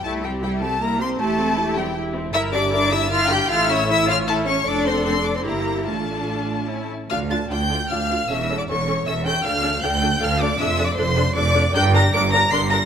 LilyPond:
<<
  \new Staff \with { instrumentName = "Violin section" } { \time 3/4 \key c \mixolydian \tempo 4 = 156 a''8 g''8 g''8 a''8 bes''8 c'''8 | a''4. g''8 r4 | \key d \minor e'''8 d'''8 d'''8 e'''8 f'''8 g'''8 | f'''8 e'''8 e'''8 f'''8 a''8 cis'''8 |
d'''8 c'''8 c'''8 d'''16 c'''16 bes''4 | a''2~ a''8 r8 | f'''8 a'''8 g'''4 f'''4 | e'''8. d'''16 cis'''4 e'''8 g'''8 |
f'''4 g'''4 f'''8 d'''8 | e'''8. d'''16 c'''4 d'''4 | g'''8 bes'''8 d''''8 bes'''8 c''''8 bes'''8 | }
  \new Staff \with { instrumentName = "Violin section" } { \time 3/4 \key c \mixolydian a'8 g'8 g'8 a'8 bes'8 c''8 | a'4. g'8 r4 | \key d \minor e''8 d''8 d''8 e''8 f''8 g''8 | f''8 e''8 e''8 f''8 a'8 cis''8 |
d''8 c''8 c''8 d''16 c''16 bes'4 | a'2~ a'8 r8 | f''8 a''8 g''4 f''4 | e''8. d''16 cis''4 e''8 g''8 |
f''4 g''4 f''8 d''8 | e''8. d''16 c''4 d''4 | g''8 bes''8 d'''8 bes''8 c'''8 bes''8 | }
  \new Staff \with { instrumentName = "Viola section" } { \time 3/4 \key c \mixolydian <g e'>8 <c' g'>8 <g e'>8 <c' g'>8 <g e'>8 <c' g'>8 | <e' g'>8 <c' e'>8 <e' g'>8 <c' e'>8 <e' g'>8 <c' e'>8 | \key d \minor <e' bes'>8 <d' g'>8 <e' bes'>8 <d' g'>8 <e' bes'>8 <d' g'>8 | <e' a'>8 <cis' cis''>8 <e' a'>8 <cis' cis''>8 <e' a'>8 <cis' cis''>8 |
<d' a'>2 <e' g'>4 | <d' f'>2 <cis' e'>8 r8 | <d' f'>8 <d' f'>8 <d' f'>8 <d' f'>8 <d' f'>8 <d' f'>8 | <cis' a'>8 <cis' a'>8 <cis' a'>8 <cis' a'>8 <cis' a'>8 <cis' a'>8 |
<d' a'>8 <d' a'>8 <d' a'>8 <d' a'>8 <d' a'>8 <d' a'>8 | <d' a'>8 <d' a'>8 <d' a'>8 <d' a'>8 <d' a'>8 <d' a'>8 | <d' bes'>8 <d' bes'>8 <d' bes'>8 <d' bes'>8 <d' bes'>8 <d' bes'>8 | }
  \new Staff \with { instrumentName = "Cello section" } { \time 3/4 \key c \mixolydian a8 g8 g8 a8 bes8 c'8 | a4. g8 r4 | \key d \minor e'8 d'8 d'8 e'8 f'8 g'8 | f'8 e'8 e'8 f'8 a8 cis'8 |
d'8 c'8 c'8 d'16 c'16 bes4 | a2~ a8 r8 | d,4 d,4 d,4 | e,4 e,4 e,4 |
d,4 d,4 d,4 | f,4 f,4 f,4 | g,4 g,4 g,4 | }
  \new Staff \with { instrumentName = "Double bass section" } { \clef bass \time 3/4 \key c \mixolydian c,2. | e,,2. | \key d \minor g,,2. | a,,2. |
f,,2 g,,4 | a,,2~ a,,8 r8 | d,4 d,4 d,4 | e,,4 e,,4 e,,4 |
d,4 d,4 d,4 | f,,4 f,,4 f,,4 | g,,4 g,,4 g,,4 | }
>>